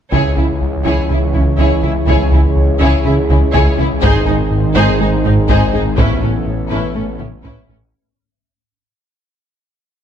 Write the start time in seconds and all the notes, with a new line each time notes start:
0.12 C#2 C#3 E3 G#3 C#4 E4 G#4 C#5, taiko
0.36 C#2 C#3 E4 G#4
0.61 C#2
0.85 C#2 C#3 E4 G#4 C#5
1.09 C#2 C#3 E4 G#4
1.34 C#2 C#3 C#4 E4
1.58 C#2 C#3 E4 G#4 C#5
1.83 C#2 C#3 E4 G#4
2.07 C#2 C#3 E4 G#4 C#5, taiko
2.32 C#2 C#3 E4 G#4
2.56 C#2
2.81 C#2 C#3 E4 G#4 C#5
3.05 C#2 C#3 E4 G#4
3.30 C#2 C#3 C#4 E4
3.54 C#2 C#3 E4 G#4 C#5, taiko
3.78 C#2 C#3 E4 G#4
4.02 G#1 G#2 D#3 G#3 C4 D#4 G#4 C5, taiko
4.26 G#1 G#2 D#4 G#4
4.51 G#2
4.75 G#1 G#2 D#4 G#4 C5
5.00 G#1 G#2 G#3 D#4 G#4
5.25 G#1 G#2 C4 D#4
5.49 G#1 G#2 D#4 G#4 C5, taiko
5.73 G#1 G#2 D#4 G#4
5.97 A1 A2 E3 A3 B3 C#4 E4 A4 B4 C#5, taiko
6.22 A1 A2 C#4 A4, taiko mid
6.47 A2
6.70 A1 A2 C#4 E4 B4
6.95 A1 A2 A3 C#4 A4
7.19 A1 A2 B3 C#4 E4, taiko mid
7.43 A1 A2 C#4 E4 B4, taiko
7.68 A1 A2 C#4 A4